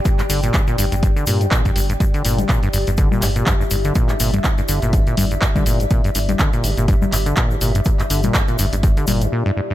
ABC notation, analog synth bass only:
X:1
M:4/4
L:1/16
Q:"Swing 16ths" 1/4=123
K:Gdor
V:1 name="Analog synth bass" clef=bass
z2 G,,,2 z2 G,,, G,,,2 z G,,2 z2 G,,,2 | z2 G,,,2 z2 G,,, G,,,2 z G,,,2 z2 G,,,2 | z2 G,,,2 z2 G,,, G,,,2 z G,,,2 z2 G,,,2 | z2 G,,,2 z2 G,,, G,,,2 z G,,,2 z2 G,,,2 |
z2 G,,,2 z2 G,,, G,,,2 z G,,,2 z4 |]